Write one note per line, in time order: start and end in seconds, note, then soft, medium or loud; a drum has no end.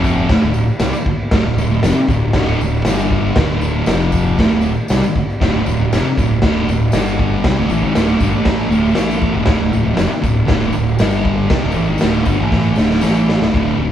0.00 0.27 F1 loud
0.00 0.29 F2 loud
0.00 0.29 C3 loud
0.00 0.29 F3 loud
0.04 kick medium
0.04 tambourine medium
0.29 0.41 D1 loud
0.29 0.42 D2 medium
0.29 0.43 A2 loud
0.29 kick loud
0.29 snare loud
0.29 tambourine soft
0.29 crash medium
0.42 0.66 D1 medium
0.42 0.64 D2 medium
0.42 0.64 A2 medium
0.42 tambourine soft
0.54 tambourine medium
0.68 tambourine soft
0.80 0.92 C2 loud
0.80 0.93 C3 medium
0.80 0.94 G3 loud
0.80 snare loud
0.80 tambourine loud
0.80 crash medium
0.93 muted fingered electric bass stroke soft
0.93 muted distorted electric guitar stroke medium
0.93 tambourine medium
1.06 muted distorted electric guitar stroke medium
1.06 kick medium
1.31 1.42 D1 loud
1.31 1.44 D2 medium
1.31 1.44 A2 loud
1.31 kick loud
1.31 snare loud
1.31 tambourine soft
1.31 crash medium
1.43 1.55 D1 medium
1.43 1.57 D2 medium
1.43 1.57 A2 medium
1.56 1.69 D1 medium
1.56 1.69 D2 medium
1.56 1.70 A2 medium
1.56 tambourine medium
1.70 1.82 D1 medium
1.70 1.83 D2 medium
1.70 1.84 A2 medium
1.83 1.95 F1 loud
1.83 1.95 F2 medium
1.83 1.96 C3 loud
1.83 snare loud
1.83 tambourine medium
1.83 crash medium
1.96 muted distorted electric guitar stroke medium
1.96 tambourine soft
2.08 2.32 D1 medium
2.08 2.29 D2 medium
2.08 2.30 A2 medium
2.08 kick medium
2.08 tambourine medium
2.33 2.58 D1 loud
2.33 2.59 D2 loud
2.33 2.60 A2 medium
2.33 2.60 D3 loud
2.33 kick loud
2.33 snare loud
2.33 tambourine soft
2.33 crash medium
2.48 tambourine soft
2.60 2.84 D1 medium
2.60 2.81 D2 medium
2.60 2.81 A2 medium
2.60 tambourine medium
2.75 tambourine soft
2.85 3.33 G1 loud
2.85 3.36 G2 medium
2.85 3.37 D3 medium
2.85 3.37 G3 medium
2.85 snare loud
2.85 tambourine loud
2.85 crash medium
2.99 tambourine medium
3.11 kick medium
3.36 3.84 D1 medium
3.36 3.87 D2 loud
3.36 3.87 A2 loud
3.36 3.88 D3 loud
3.36 kick loud
3.36 snare loud
3.36 tambourine soft
3.36 crash medium
3.61 tambourine medium
3.86 4.35 F1 medium
3.86 4.38 F2 loud
3.86 4.38 C3 loud
3.86 4.39 F3 loud
3.86 snare loud
3.86 tambourine medium
3.86 crash medium
4.00 tambourine soft
4.12 kick medium
4.12 tambourine medium
4.37 4.50 D1 loud
4.37 4.51 D2 medium
4.37 4.51 A2 loud
4.37 kick loud
4.37 snare loud
4.37 tambourine soft
4.37 crash medium
4.50 4.76 D1 medium
4.50 4.72 D2 medium
4.50 4.73 A2 medium
4.50 tambourine soft
4.61 tambourine medium
4.75 tambourine soft
4.88 5.02 C2 loud
4.88 5.02 C3 medium
4.88 5.02 G3 medium
4.88 snare loud
4.88 tambourine loud
4.88 crash medium
5.03 muted distorted electric guitar stroke medium
5.03 muted fingered electric bass stroke soft
5.03 tambourine medium
5.16 muted distorted electric guitar stroke medium
5.16 kick medium
5.16 tambourine soft
5.30 tambourine soft
5.41 5.53 D1 medium
5.41 5.53 D2 loud
5.41 5.53 A2 loud
5.41 kick loud
5.41 snare loud
5.41 tambourine soft
5.41 crash medium
5.54 5.65 D1 medium
5.54 5.65 D2 medium
5.54 5.66 A2 medium
5.66 5.78 D1 medium
5.66 5.79 D2 medium
5.66 5.79 A2 medium
5.66 tambourine medium
5.80 5.91 D1 medium
5.80 5.93 D2 medium
5.80 5.93 A2 medium
5.92 6.04 F1 medium
5.92 6.04 F2 medium
5.92 6.05 C3 loud
5.92 snare loud
5.92 tambourine medium
5.92 crash medium
6.07 muted distorted electric guitar stroke medium
6.18 6.41 D1 medium
6.18 6.38 D2 medium
6.18 6.38 A2 medium
6.18 kick medium
6.18 tambourine medium
6.42 6.66 D1 loud
6.42 6.67 D2 medium
6.42 6.67 A2 loud
6.42 6.68 D3 loud
6.42 kick loud
6.42 snare loud
6.42 tambourine soft
6.42 crash medium
6.67 6.91 D1 medium
6.67 6.89 D2 medium
6.67 6.89 A2 medium
6.67 tambourine medium
6.81 tambourine soft
6.92 7.41 G1 medium
6.92 7.44 G2 medium
6.92 7.44 D3 medium
6.92 7.44 G3 loud
6.92 snare loud
6.92 tambourine loud
6.92 crash medium
7.06 tambourine medium
7.19 kick medium
7.44 7.56 C2 medium
7.44 7.56 C3 loud
7.44 7.57 G3 loud
7.44 kick loud
7.44 snare loud
7.44 tambourine soft
7.44 crash medium
7.57 7.69 D1 loud
7.57 7.69 D2 loud
7.57 7.69 A2 loud
7.69 7.81 A1 medium
7.69 7.82 A2 medium
7.69 7.82 E3 loud
7.69 tambourine medium
7.82 7.94 G#1 medium
7.82 7.94 G#2 medium
7.82 7.95 D#3 loud
7.95 8.19 D1 loud
7.95 8.19 D2 loud
7.95 8.20 A2 loud
7.95 8.20 D3 loud
7.95 snare loud
7.95 tambourine medium
7.95 crash medium
8.08 tambourine soft
8.20 8.32 G1 medium
8.20 8.33 G2 medium
8.20 8.33 D3 medium
8.20 kick medium
8.20 tambourine medium
8.32 8.68 A1 medium
8.32 8.69 A2 medium
8.32 8.70 E3 medium
8.32 8.70 A3 loud
8.45 kick loud
8.45 snare loud
8.45 tambourine soft
8.45 crash medium
8.60 tambourine soft
8.69 8.94 D1 loud
8.69 8.95 D2 medium
8.69 8.94 A2 loud
8.69 8.96 D3 medium
8.69 tambourine medium
8.86 tambourine soft
8.95 9.31 A1 loud
8.95 9.33 A2 medium
8.95 9.33 E3 medium
8.95 9.34 A3 loud
8.95 snare loud
8.95 tambourine medium
8.95 crash medium
9.11 tambourine medium
9.22 kick medium
9.33 9.46 D1 medium
9.33 9.46 D2 medium
9.33 9.47 A2 loud
9.46 9.59 D1 medium
9.46 9.59 D2 medium
9.46 9.59 A2 loud
9.46 kick loud
9.46 snare loud
9.46 tambourine soft
9.46 crash medium
9.60 9.72 D1 medium
9.60 9.70 D2 medium
9.60 9.71 A2 medium
9.71 9.85 D1 medium
9.71 9.82 D2 medium
9.71 9.82 A2 medium
9.71 tambourine medium
9.83 9.97 D1 medium
9.83 9.94 D2 medium
9.83 9.94 A2 medium
9.94 10.07 F2 loud
9.94 10.08 C3 loud
9.94 snare loud
9.94 crash medium
9.99 10.10 F1 medium
9.99 tambourine medium
10.08 muted distorted electric guitar stroke medium
10.13 tambourine soft
10.22 10.47 D1 medium
10.22 10.43 D2 medium
10.22 10.43 A2 medium
10.22 kick medium
10.22 tambourine medium
10.45 10.73 D1 loud
10.45 10.71 D2 loud
10.45 10.72 A2 medium
10.45 10.73 D3 loud
10.45 kick loud
10.45 snare loud
10.45 crash medium
10.50 tambourine soft
10.62 tambourine soft
10.72 10.98 D1 medium
10.72 10.94 D2 medium
10.72 10.94 A2 medium
10.72 tambourine medium
10.87 tambourine soft
10.99 11.47 G1 loud
10.99 11.49 G2 medium
10.99 11.49 D3 medium
10.99 11.49 G3 medium
10.99 snare loud
10.99 tambourine medium
10.99 crash medium
11.11 tambourine medium
11.25 kick medium
11.49 11.62 C2 medium
11.49 11.62 C3 loud
11.49 11.62 G3 loud
11.49 kick loud
11.49 snare loud
11.49 tambourine soft
11.49 crash medium
11.61 11.74 D1 medium
11.61 11.75 D2 loud
11.61 11.74 A2 loud
11.61 tambourine soft
11.72 11.87 A1 loud
11.72 11.87 A2 loud
11.72 tambourine medium
11.77 11.88 E3 loud
11.85 12.00 G#1 medium
11.85 12.00 G#2 loud
11.85 12.01 D#3 loud
11.85 tambourine soft
11.98 12.25 D1 medium
11.98 snare loud
11.98 tambourine medium
11.98 crash medium
12.02 12.26 D2 medium
12.02 12.27 A2 loud
12.02 12.27 D3 loud
12.25 12.38 G1 medium
12.25 12.39 G2 medium
12.25 12.39 D3 loud
12.25 kick medium
12.25 tambourine medium
12.39 12.75 A1 medium
12.39 12.77 A2 loud
12.39 12.77 E3 medium
12.39 12.78 A3 loud
12.52 kick loud
12.52 snare medium
12.63 tambourine soft
12.76 13.01 D1 medium
12.76 13.02 D2 medium
12.76 13.02 A2 medium
12.76 13.03 D3 loud
12.76 snare medium
12.76 tambourine medium
12.88 snare medium
12.88 tambourine soft
13.01 13.38 A1 medium
13.01 13.40 A2 medium
13.01 13.40 E3 medium
13.01 13.40 A3 medium
13.01 snare loud
13.01 tambourine medium
13.14 tambourine medium
13.29 snare loud
13.40 13.53 D1 medium
13.40 13.52 D2 loud
13.40 13.53 A2 loud
13.40 snare medium
13.53 13.71 D1 loud
13.53 13.77 D2 loud
13.53 13.77 A2 loud
13.53 13.78 D3 loud
13.53 kick loud
13.53 crash medium
13.77 13.92 D1 medium
13.77 13.92 D2 medium
13.77 13.92 A2 medium